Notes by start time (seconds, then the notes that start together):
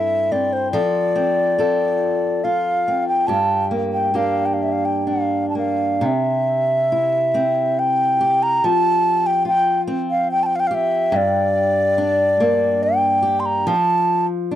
Already playing: G2 C4 E4 A4 E5
0.32 C4 D5
0.53 C5
0.72 F3 A4 D5
1.16 C4
1.58 C4 F4 A4
2.44 F4 F5
2.88 C4
3.08 G5
3.27 G2 G4 A5
3.71 A#3
3.93 G5
4.14 A#3 D4 G4 F5
4.46 G5
4.54 F5
4.63 E5
4.72 F5
4.85 G5
5.07 D4 F5
5.50 A5
5.55 A#3 F5
6.01 C3
6.06 E5
6.92 E4
7.34 C4
7.79 G5
8.21 G4
8.43 A#5
8.64 F3 A5
9.26 G5
9.45 F4 G5
9.87 C4
10.11 F5
10.31 G5
10.43 G5 A5
10.56 F5
10.60 G5
10.67 G4 F5
10.74 E5
11.12 G2
11.16 D5
11.98 D4
12.40 A#3
12.83 G5
13.22 G4
13.40 C6
13.46 A#5
13.67 F3 A5
14.51 D4